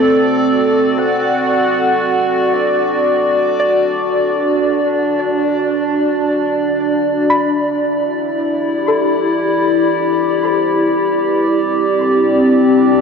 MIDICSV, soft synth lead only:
0, 0, Header, 1, 2, 480
1, 0, Start_track
1, 0, Key_signature, 1, "minor"
1, 0, Tempo, 500000
1, 12491, End_track
2, 0, Start_track
2, 0, Title_t, "Soft synth lead"
2, 0, Program_c, 0, 80
2, 0, Note_on_c, 0, 69, 110
2, 943, Note_on_c, 0, 78, 106
2, 958, Note_off_c, 0, 69, 0
2, 2434, Note_on_c, 0, 74, 82
2, 2449, Note_off_c, 0, 78, 0
2, 5978, Note_off_c, 0, 74, 0
2, 7029, Note_on_c, 0, 76, 123
2, 9028, Note_on_c, 0, 74, 113
2, 9043, Note_off_c, 0, 76, 0
2, 10023, Note_off_c, 0, 74, 0
2, 10027, Note_on_c, 0, 72, 76
2, 10540, Note_on_c, 0, 71, 80
2, 10555, Note_off_c, 0, 72, 0
2, 11024, Note_on_c, 0, 74, 109
2, 11038, Note_off_c, 0, 71, 0
2, 12491, Note_off_c, 0, 74, 0
2, 12491, End_track
0, 0, End_of_file